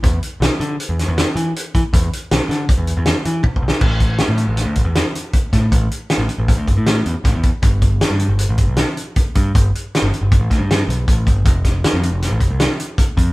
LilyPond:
<<
  \new Staff \with { instrumentName = "Picked electric bass" } { \clef bass \time 5/4 \key a \minor \tempo 4 = 157 e,8 r8 b,,16 r16 d8 r16 e,8 e,8 r16 e8 r8 e16 r16 | e,8 r8 b,,16 r16 d8 r16 e,8 e,8 r16 e8 r8 b,,16 r16 | a,,4~ a,,16 a,8 a,,8 d,16 a,,16 e,8 r4 r16 a,8 | a,,8 r8. a,,16 r16 a,,8 d,16 g,,16 a,8. e,16 r16 a,,16 e,8 r16 |
g,,4~ g,,16 g,8 g,,8 a,,16 g,,16 b,,8 r4 r16 g,8 | g,,8 r8. g,,16 r16 g,,8 a,,16 d,16 g,8. b,,8 a,,8 g,,8 | f,,4~ f,,16 f,8 f,,8 a,,16 f,,16 c,8 r4 r16 f,8 | }
  \new DrumStaff \with { instrumentName = "Drums" } \drummode { \time 5/4 <hh bd>8 hh8 <hh sn>8 hh8 hh8 <hh sn>8 <hh sn>8 hh8 hh8 <hh bd>8 | <hh bd>8 hh8 <hh sn>8 <hh sn>8 <hh bd>8 hh8 <hh sn>8 hh8 \tuplet 3/2 { <bd tommh>8 bd8 sn8 } | <cymc bd>8 <hh bd>8 <hh sn>8 hh8 <hh sn>8 <hh bd>8 <hh sn>8 hh8 <hh bd>8 <hh bd sn>8 | <hh bd>8 hh8 <hh sn>8 hh8 <hh bd>8 <hh bd>8 <hh sn>8 hh8 <hh bd sn>8 <hh bd>8 |
<hh bd>8 <hh bd>8 <hh sn>8 hh8 hh8 <hh bd>8 <hh sn>8 hh8 <hh bd>8 <hh bd>8 | <hh bd>8 hh8 <hh sn>8 hh8 <hh bd>8 <hh bd sn>8 <hh sn>8 hh8 <hh bd>8 <hh bd>8 | <hh bd>8 <hh bd sn>8 <hh sn>8 hh8 <hh sn>8 <hh bd>8 <hh sn>8 hh8 <hh bd>8 <hh bd>8 | }
>>